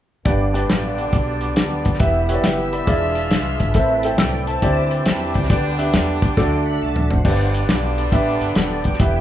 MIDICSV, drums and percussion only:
0, 0, Header, 1, 2, 480
1, 0, Start_track
1, 0, Key_signature, 1, "major"
1, 0, Tempo, 437318
1, 279, Time_signature, 4, 2, 24, 8
1, 10107, End_track
2, 0, Start_track
2, 0, Title_t, "Drums"
2, 278, Note_on_c, 9, 42, 73
2, 281, Note_on_c, 9, 36, 103
2, 388, Note_off_c, 9, 42, 0
2, 391, Note_off_c, 9, 36, 0
2, 605, Note_on_c, 9, 42, 76
2, 715, Note_off_c, 9, 42, 0
2, 764, Note_on_c, 9, 38, 91
2, 764, Note_on_c, 9, 42, 84
2, 874, Note_off_c, 9, 38, 0
2, 874, Note_off_c, 9, 42, 0
2, 1076, Note_on_c, 9, 42, 59
2, 1186, Note_off_c, 9, 42, 0
2, 1238, Note_on_c, 9, 36, 89
2, 1241, Note_on_c, 9, 42, 63
2, 1348, Note_off_c, 9, 36, 0
2, 1350, Note_off_c, 9, 42, 0
2, 1547, Note_on_c, 9, 42, 65
2, 1657, Note_off_c, 9, 42, 0
2, 1714, Note_on_c, 9, 42, 84
2, 1722, Note_on_c, 9, 38, 92
2, 1824, Note_off_c, 9, 42, 0
2, 1831, Note_off_c, 9, 38, 0
2, 2031, Note_on_c, 9, 42, 55
2, 2039, Note_on_c, 9, 36, 75
2, 2123, Note_on_c, 9, 38, 29
2, 2141, Note_off_c, 9, 42, 0
2, 2148, Note_off_c, 9, 36, 0
2, 2192, Note_on_c, 9, 42, 76
2, 2197, Note_on_c, 9, 36, 103
2, 2232, Note_off_c, 9, 38, 0
2, 2301, Note_off_c, 9, 42, 0
2, 2307, Note_off_c, 9, 36, 0
2, 2513, Note_on_c, 9, 42, 76
2, 2623, Note_off_c, 9, 42, 0
2, 2675, Note_on_c, 9, 42, 91
2, 2676, Note_on_c, 9, 38, 97
2, 2785, Note_off_c, 9, 42, 0
2, 2786, Note_off_c, 9, 38, 0
2, 2994, Note_on_c, 9, 42, 62
2, 3104, Note_off_c, 9, 42, 0
2, 3153, Note_on_c, 9, 36, 89
2, 3157, Note_on_c, 9, 42, 64
2, 3263, Note_off_c, 9, 36, 0
2, 3266, Note_off_c, 9, 42, 0
2, 3460, Note_on_c, 9, 42, 64
2, 3570, Note_off_c, 9, 42, 0
2, 3630, Note_on_c, 9, 42, 80
2, 3637, Note_on_c, 9, 38, 95
2, 3740, Note_off_c, 9, 42, 0
2, 3747, Note_off_c, 9, 38, 0
2, 3948, Note_on_c, 9, 42, 57
2, 3954, Note_on_c, 9, 36, 71
2, 4058, Note_off_c, 9, 42, 0
2, 4064, Note_off_c, 9, 36, 0
2, 4106, Note_on_c, 9, 42, 74
2, 4113, Note_on_c, 9, 36, 97
2, 4216, Note_off_c, 9, 42, 0
2, 4223, Note_off_c, 9, 36, 0
2, 4425, Note_on_c, 9, 42, 78
2, 4535, Note_off_c, 9, 42, 0
2, 4589, Note_on_c, 9, 42, 87
2, 4590, Note_on_c, 9, 38, 106
2, 4699, Note_off_c, 9, 38, 0
2, 4699, Note_off_c, 9, 42, 0
2, 4910, Note_on_c, 9, 42, 60
2, 5020, Note_off_c, 9, 42, 0
2, 5074, Note_on_c, 9, 36, 84
2, 5079, Note_on_c, 9, 42, 67
2, 5184, Note_off_c, 9, 36, 0
2, 5189, Note_off_c, 9, 42, 0
2, 5389, Note_on_c, 9, 42, 62
2, 5499, Note_off_c, 9, 42, 0
2, 5550, Note_on_c, 9, 42, 81
2, 5557, Note_on_c, 9, 38, 88
2, 5659, Note_off_c, 9, 42, 0
2, 5667, Note_off_c, 9, 38, 0
2, 5865, Note_on_c, 9, 42, 54
2, 5876, Note_on_c, 9, 36, 73
2, 5959, Note_on_c, 9, 38, 31
2, 5975, Note_off_c, 9, 42, 0
2, 5986, Note_off_c, 9, 36, 0
2, 6037, Note_on_c, 9, 36, 100
2, 6037, Note_on_c, 9, 42, 75
2, 6068, Note_off_c, 9, 38, 0
2, 6147, Note_off_c, 9, 36, 0
2, 6147, Note_off_c, 9, 42, 0
2, 6352, Note_on_c, 9, 42, 75
2, 6461, Note_off_c, 9, 42, 0
2, 6515, Note_on_c, 9, 42, 90
2, 6516, Note_on_c, 9, 38, 100
2, 6625, Note_off_c, 9, 38, 0
2, 6625, Note_off_c, 9, 42, 0
2, 6828, Note_on_c, 9, 42, 55
2, 6830, Note_on_c, 9, 36, 85
2, 6938, Note_off_c, 9, 42, 0
2, 6940, Note_off_c, 9, 36, 0
2, 6994, Note_on_c, 9, 36, 91
2, 6999, Note_on_c, 9, 38, 46
2, 7104, Note_off_c, 9, 36, 0
2, 7108, Note_off_c, 9, 38, 0
2, 7637, Note_on_c, 9, 43, 76
2, 7747, Note_off_c, 9, 43, 0
2, 7799, Note_on_c, 9, 43, 77
2, 7908, Note_off_c, 9, 43, 0
2, 7957, Note_on_c, 9, 36, 94
2, 7957, Note_on_c, 9, 49, 76
2, 8066, Note_off_c, 9, 36, 0
2, 8067, Note_off_c, 9, 49, 0
2, 8278, Note_on_c, 9, 42, 74
2, 8388, Note_off_c, 9, 42, 0
2, 8439, Note_on_c, 9, 38, 99
2, 8439, Note_on_c, 9, 42, 90
2, 8548, Note_off_c, 9, 42, 0
2, 8549, Note_off_c, 9, 38, 0
2, 8759, Note_on_c, 9, 42, 62
2, 8869, Note_off_c, 9, 42, 0
2, 8914, Note_on_c, 9, 36, 89
2, 8919, Note_on_c, 9, 42, 61
2, 9024, Note_off_c, 9, 36, 0
2, 9029, Note_off_c, 9, 42, 0
2, 9232, Note_on_c, 9, 42, 63
2, 9341, Note_off_c, 9, 42, 0
2, 9389, Note_on_c, 9, 42, 85
2, 9397, Note_on_c, 9, 38, 89
2, 9499, Note_off_c, 9, 42, 0
2, 9506, Note_off_c, 9, 38, 0
2, 9704, Note_on_c, 9, 42, 54
2, 9715, Note_on_c, 9, 36, 73
2, 9803, Note_on_c, 9, 38, 28
2, 9814, Note_off_c, 9, 42, 0
2, 9825, Note_off_c, 9, 36, 0
2, 9874, Note_on_c, 9, 42, 74
2, 9876, Note_on_c, 9, 36, 106
2, 9913, Note_off_c, 9, 38, 0
2, 9984, Note_off_c, 9, 42, 0
2, 9986, Note_off_c, 9, 36, 0
2, 10107, End_track
0, 0, End_of_file